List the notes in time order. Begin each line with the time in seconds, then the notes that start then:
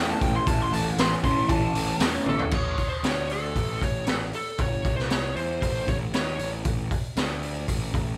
Already playing: E2 A2 E3 A3 C#4 E4 G5
0.10 A5
0.21 A1 G5, kick, open hi-hat
0.36 C6
0.47 A1 A2 E3 A3 C#4 E4 A5, kick, open hi-hat
0.62 C6
0.73 A1 A5, open hi-hat
0.97 A1 C6, snare, open hi-hat
1.23 A1 A2 E3 A3 C#4 E4 C6, kick, open hi-hat
1.49 A1 A5, kick, open hi-hat
1.75 A1, open hi-hat
2.00 E2 A2 E3 A3 C#4 E4, snare, open hi-hat
2.26 A1 A4, high tom
2.39 floor tom
2.51 A1 C#5, kick, crash
2.77 muted picked electric bass stroke, kick, open hi-hat
2.89 C5
3.03 D2 C#5, snare, open hi-hat
3.30 A4, open hi-hat
3.55 A1, kick, open hi-hat
3.81 A1 C#5, kick, open hi-hat
4.07 A1 A4, snare, open hi-hat
4.33 A4, open hi-hat
4.58 G1 C#5, kick, open hi-hat
4.85 C2, kick, open hi-hat
4.96 C5, snare
5.10 C#5, snare, open hi-hat
5.36 E2 C5, open hi-hat
5.62 A1, kick, open hi-hat
5.87 A1 C#5, kick, open hi-hat
6.13 D#2 C#5, snare, open hi-hat
6.39 A1, open hi-hat
6.65 A1, kick, open hi-hat
6.91 muted picked electric bass stroke, kick, open hi-hat
7.16 D2, snare, open hi-hat
7.43 open hi-hat
7.68 A1, kick, open hi-hat
7.93 A1, kick, open hi-hat